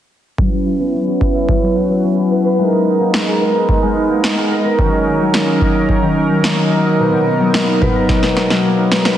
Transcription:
0.38 F#3 C#4 E4 B4, kick
0.52 F#3
0.66 E4
0.80 B3
0.93 C#4
1.07 F#4
1.21 B4, kick
1.35 E5
1.49 F#3, kick
1.62 F#3
1.76 E4
1.90 B3
2.04 C#4
2.17 F#4
2.31 B4
2.45 B4
2.58 G#3 B3 D#4 A#4
2.72 G#3
2.86 D#4
3.00 A#3
3.14 B3, snare
3.27 G#4
3.41 A#4
3.55 D#5
3.69 G#3, kick
3.82 G#3
3.96 D#4
4.10 A#3
4.24 B3, snare
4.37 G#4
4.51 A#4
4.65 A#4
4.79 D#3 F#3 C#4 D#4, kick
4.93 D#3
5.06 C#4
5.20 F#3
5.34 A#3, snare
5.47 D#4
5.61 D#5, kick
5.75 A#5
5.89 D#3, kick
6.02 D#3
6.16 C#4
6.30 F#3
6.44 A#3, snare
6.58 D#4
6.72 D#5
6.85 D#5
6.99 B2 B3
7.13 B2
7.26 B3
7.40 F#3
7.54 snare
7.68 D#4
7.81 B4, kick, mid tom
7.95 A#5
8.09 B2, kick, snare
8.23 B2, snare
8.37 B3, snare
8.50 F#3, snare
8.64 A#3
8.78 D#4
8.92 B4, snare
9.05 B4, snare

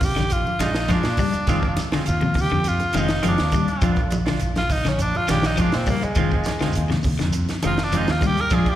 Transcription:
Already playing: A#1
0.01 kick, open hi-hat, low conga, shekere
0.05 G4
0.16 A#1 D3, muted clean electric guitar stroke, snare, closed hi-hat, high conga, shekere
0.30 F4, closed hi-hat, shekere
0.46 muted clean electric guitar stroke, high conga, shekere
0.59 A#1 G#3 D4 D#4 F4, muted clean electric guitar stroke, snare, closed hi-hat, high conga, shekere
0.73 muted clean electric guitar stroke, snare, closed hi-hat, shekere
0.88 F3 G#3 D4 F4, kick, snare, closed hi-hat, high conga, shekere
0.93 D4
1.03 A#2, snare, closed hi-hat, shekere
1.17 G3, muted clean electric guitar stroke, kick, open hi-hat, low conga, shekere
1.33 muted clean electric guitar stroke, muted fingered electric bass stroke, closed hi-hat, shekere
1.47 F1 D#3 G#3 C4 F4, kick, snare, closed hi-hat, shekere
1.63 kick, shekere
1.77 muted clean electric guitar stroke, snare, closed hi-hat, high conga, shekere
1.92 D3 G#3 C4 F4, muted fingered electric bass stroke, snare, closed hi-hat, shekere
2.06 D#2 F4, muted clean electric guitar stroke, closed hi-hat, shekere
2.21 C3, muted clean electric guitar stroke, high conga, shekere
2.34 kick, open hi-hat, low conga
2.38 G4, shekere
2.50 F2 D3, muted clean electric guitar stroke, closed hi-hat, shekere
2.64 closed hi-hat
2.68 F4, shekere
2.80 muted clean electric guitar stroke, closed hi-hat, high conga, shekere
2.93 F1 D#3 G#3 C4 F4, closed hi-hat, high conga, low conga
2.97 D#4, shekere
3.08 muted clean electric guitar stroke, snare, closed hi-hat, shekere
3.22 D#3 F3 G#3 C4 F4, closed hi-hat, high conga, low conga, shekere
3.28 D4
3.38 D#2, snare, closed hi-hat, shekere
3.52 G3, muted clean electric guitar stroke, kick, closed hi-hat, low conga, shekere
3.68 muted clean electric guitar stroke, closed hi-hat, shekere
3.81 A#1 F3 D4 F4, muted clean electric guitar stroke, kick, closed hi-hat, shekere
3.96 kick, closed hi-hat, shekere
4.10 muted clean electric guitar stroke, closed hi-hat, high conga, shekere
4.26 D3 D4 F4, snare, closed hi-hat, shekere
4.39 A#1, muted clean electric guitar stroke, closed hi-hat, shekere
4.55 F4, muted clean electric guitar stroke, snare, closed hi-hat, high conga, shekere
4.69 D#4, kick, open hi-hat, low conga, shekere
4.84 A#1 D3, muted clean electric guitar stroke, snare, closed hi-hat, shekere
4.89 C#4
4.99 D4, closed hi-hat, shekere
5.15 F4, muted clean electric guitar stroke, high conga, shekere
5.28 A#1 D#3 G#3 D4 F4 G4, snare, closed hi-hat, high conga, shekere
5.43 D#4, muted clean electric guitar stroke, snare, closed hi-hat, shekere
5.57 F3 G#3 D4 F4, kick, closed hi-hat, high conga, low conga, shekere
5.61 D4
5.72 A#2 C4, snare, closed hi-hat, shekere
5.86 G3 A#3, muted clean electric guitar stroke, kick, open hi-hat, low conga, shekere
6.02 G#3, muted clean electric guitar stroke, muted fingered electric bass stroke, closed hi-hat, shekere
6.15 F1 D#3 G#3 C4 F4, kick, closed hi-hat, shekere
6.31 kick, shekere
6.44 muted clean electric guitar stroke, snare, closed hi-hat, high conga, shekere
6.59 D3 G#3 C4 F4, muted fingered electric bass stroke, snare, closed hi-hat, shekere
6.73 muted clean electric guitar stroke, closed hi-hat, shekere
6.77 D#2
6.88 C3, muted clean electric guitar stroke, snare, high conga, shekere
7.03 kick, open hi-hat, low conga, shekere
7.18 F2 D3, muted clean electric guitar stroke, snare, closed hi-hat, shekere
7.33 closed hi-hat, shekere
7.48 muted clean electric guitar stroke, snare, closed hi-hat, high conga, shekere
7.63 F1 D#3 G#3 C4 F4, closed hi-hat, high conga, shekere
7.67 F4
7.77 muted clean electric guitar stroke, snare, closed hi-hat, shekere
7.84 D4
7.92 D#3 F3 G#3 C4 F4, closed hi-hat, high conga, shekere
7.98 D#4
8.07 D#2 F4, snare, closed hi-hat, shekere
8.21 G3, muted clean electric guitar stroke, kick, closed hi-hat, low conga, shekere
8.26 G4
8.37 A#4, muted clean electric guitar stroke, closed hi-hat, shekere
8.50 A#1 F3 G#3 D4 F4 G#4, kick, closed hi-hat, shekere
8.66 G4, kick, closed hi-hat, shekere

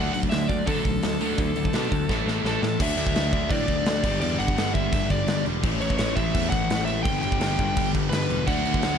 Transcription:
Already playing: D3 F#3 A3 D4 F#5
0.00 A3 D4
0.13 D2 D3 F#3 A3 F#5, open hi-hat
0.23 kick
0.30 D2 D3 F#3 A3 E5, snare, open hi-hat
0.48 D2 D3 F#3 A3 D5, kick, open hi-hat
0.66 D3 F#3 A3 D4 A4, kick, open hi-hat
0.85 B1 D3 F#3 A3, kick, open hi-hat
1.03 D2 D3 F#3 A3, snare, open hi-hat
1.21 D2 D3 F#3 A3 D4, open hi-hat
1.38 D2 D3 F#3 A3 D4, kick, open hi-hat
1.56 D2 D3 F#3 A3, open hi-hat
1.65 kick
1.73 B2 D3 F#3 A3 D4, snare, open hi-hat
1.91 D2 D3 F#3 A3, kick, open hi-hat
2.08 A1 A2 E3 A3, kick, snare
2.26 A1 A2 E3 A3, snare
2.44 A1 A2 E3 A3 A4, snare
2.61 A2 E3, snare
2.79 D2 D3 F#3 A3 D4 E5, kick, crash
2.97 D2, crash
3.07 kick
3.15 D2 D3 A3 D4, snare, crash
3.33 D2 D3 A3 D4, kick, crash
3.50 A2 D3 A3 D4 D5, kick, crash
3.68 D2, kick, crash
3.86 D2 D3 A3 D4, snare, crash
4.03 G1 G2 D3 G3 B3 D4, kick, crash
4.20 E2 G2 D3 G3 D5, crash
4.38 G1 F#5, crash
4.48 kick
4.57 G1 G2 D3 G3, snare, crash
4.74 G1 G2 D3 G3 E5, kick, crash
4.93 G1 G2 D3 G3, kick, crash
5.10 G1 D5, kick, crash
5.27 G1 G2 D3 G3, snare, crash
5.45 E1 G2 D3 G3, crash
5.63 A1 A2 E3 A3 C#4 E4, kick, crash
5.81 A1 C#5, crash
5.90 kick
5.98 A1 A2 E3 A3 C#5, snare, crash
6.16 A1 A2 E3 E5, kick, crash
6.20 A3
6.35 E2 A2 E3 A3, kick, crash
6.50 A1 F#5, kick, crash
6.70 A1 A2 E3 A3, snare, crash
6.85 A2 E3 A3 E5, crash
7.03 G1 G2 D3 G3 B3 G5, kick, crash
7.07 D4
7.22 G1 G5, crash
7.32 kick
7.40 G1 G2 D3 G3, snare, crash
7.58 G1 G2 D3 G3, kick, crash
7.76 G1 G2 D3 G3, kick, crash
7.95 G1, kick, crash
8.09 G1 G2 D3 G3 B4, snare, crash
8.30 E1 G2 D3 G3, crash
8.47 D2 D3 F#3 A3 D4 F#5, kick, crash
8.65 D2, crash
8.74 kick
8.82 D2 D3 A3 D4, snare, crash

